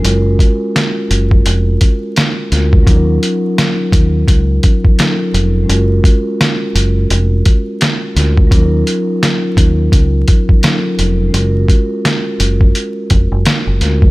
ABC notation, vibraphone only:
X:1
M:4/4
L:1/8
Q:"Swing 16ths" 1/4=85
K:Ebm
V:1 name="Vibraphone"
[A,DFGB]6- [A,DFGB] [A,DFGB] | [G,DEFB]6 [G,DEF=AB]2 | [A,DFGB]6- [A,DFGB] [A,DFGB] | [G,DEFB]6 [G,DEF=AB]2 |
[A,DFGB]6- [A,DFGB] [A,DFGB] |]